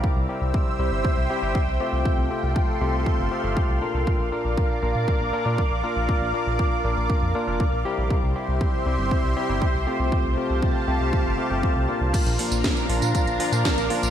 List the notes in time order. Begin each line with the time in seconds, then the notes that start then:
Already playing: C3 G3 C4 E4 G4
0.04 C5 E5 G5 E6, kick
0.16 C2
0.29 C3 G3 C4 E4 G4
0.41 C2
0.54 kick
0.79 C2 C3 G3 C4 E4 G4
0.92 G1
1.05 kick
1.17 C2
1.30 C3 G3 C4 E4 G4
1.42 G1 C3 G3 C4 E4 G4
1.55 kick
1.67 C2
1.80 C3 A3 C4 F4 G4
1.92 C2
2.05 A4 F5 C6, kick
2.18 C2
2.31 C3 A3 C4 F4 G4
2.43 C2
2.56 kick
2.81 C2 C3 A3 C4 F4 G4
2.93 C2
3.06 kick
3.19 G1
3.31 C3 A3 C4 F4 G4
3.44 G1 C3 A3 C4 F4 G4
3.57 kick
3.69 C2
3.82 A#2 A#3 D4 F4 A#4
3.94 C2
4.07 A#4 D5 D6, kick
4.19 A#1
4.32 A#2 A#3 D4 F4 A#4
4.45 A#1
4.58 kick
4.82 A#1 A#2 A#3 D4 F4 A#4
4.95 A#2
5.08 kick
5.20 A#1
5.33 A#2 A#3 D4 F4 A#4
5.46 A#2 A#3 D4 F4 A#4
5.58 kick
5.71 A#1
5.84 A#2 A#3 D4 F4 A#4
5.96 A#1
6.09 kick
6.22 A#1
6.34 A#2 A#3 D4 F4 A#4
6.47 A#1
6.59 kick
6.84 A#1 A#2 A#3 D4 F4 A#4
6.97 A#1
7.10 kick
7.22 F2
7.35 A#2 A#3 D4 F4 A#4
7.47 F1 A#2 A#3 D4 F4 A#4
7.60 kick
7.72 A#1
7.85 C3 G3 C4 E4 G4
7.98 A#1
8.10 G4 C5 E5 C6, kick
8.23 C2
8.36 C3 G3 C4 E4 G4
8.48 C2
8.61 kick
8.86 C2 C3 G3 C4 E4 G4
8.99 G1
9.11 kick
9.24 C2
9.36 C3 G3 C4 E4 G4
9.49 G1 C3 G3 C4 E4 G4
9.62 kick
9.75 C2
9.87 C3 A3 C4 F4 G4
9.99 C2
10.12 G4 F5 A5, kick
10.25 C2
10.37 C3 A3 C4 F4 G4
10.50 C2
10.62 kick
10.88 C2 C3 A3 C4 F4 G4
11.00 C2
11.13 kick
11.25 G1
11.38 C3 A3 C4 F4 G4
11.50 G1 C3 A3 C4 F4 G4
11.63 kick
11.76 C2
11.89 A#2 A#3 D4 F4 A#4
12.01 C2
12.13 D4 A#4 F5 A#5, kick, closed hi-hat, crash, tambourine
12.26 A#1, closed hi-hat, tambourine
12.39 A#2 F3 A#3 D4 F4, open hi-hat
12.51 A#1, tambourine
12.64 kick, snare, closed hi-hat, tambourine
12.77 closed hi-hat, tambourine
12.89 A#1 A#2 F3 A#3 D4 F4, open hi-hat
13.02 A#2, closed hi-hat, tambourine
13.15 kick, closed hi-hat, tambourine
13.27 A#1, closed hi-hat, tambourine
13.40 A#2 F3 A#3 D4 F4, open hi-hat
13.52 A#2 F3 A#3 D4 F4, closed hi-hat, tambourine
13.65 kick, snare, closed hi-hat, tambourine
13.77 A#1, closed hi-hat, tambourine
13.90 A#2 F3 A#3 D4 F4, open hi-hat
14.03 A#1, closed hi-hat, tambourine